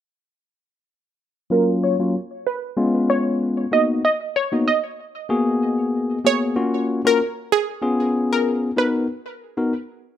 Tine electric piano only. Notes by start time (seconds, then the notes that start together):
1.50 F#3 A#3 C#4 F4
1.99 F#3 A#3 C#4 F4
2.77 G#3 B3 C#4 F4
3.71 A#3 B3 D#4 F#4
4.52 A#3 B3 D#4 F#4
5.29 A#3 B3 F#4 G#4
6.24 A#3 B3 F#4 G#4
6.56 A#3 C#4 F4 F#4
7.05 A#3 C#4 F4 F#4
7.82 B3 C#4 F4 G#4
8.77 B3 D#4 F#4 A#4
9.57 B3 D#4 F#4 A#4